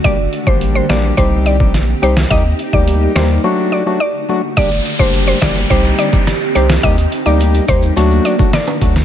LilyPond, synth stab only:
\new Staff \with { instrumentName = "Synth stab" } { \time 4/4 \key g \minor \tempo 4 = 106 <g bes d' g'>16 r8 <g bes d' g'>8. <g bes d' g'>8 <g c' ees' g'>8. <g c' ees' g'>16 r8 <g c' ees' g'>16 r16 | <g bes ees' g'>16 r8 <g bes ees' g'>8. <g bes ees' g'>8 <fis a d' fis'>8. <fis a d' fis'>16 r8 <fis a d' fis'>16 r16 | <g bes d' g'>16 r8 <g bes d' g'>8. <g bes d' g'>8 <g c' ees' g'>8. <g c' ees' g'>16 r8 <g c' ees' g'>16 r16 | <g bes ees' g'>16 r8 <g bes ees' g'>8. <g bes ees' g'>8 <fis a d' fis'>8. <fis a d' fis'>16 r8 <fis a d' fis'>16 r16 | }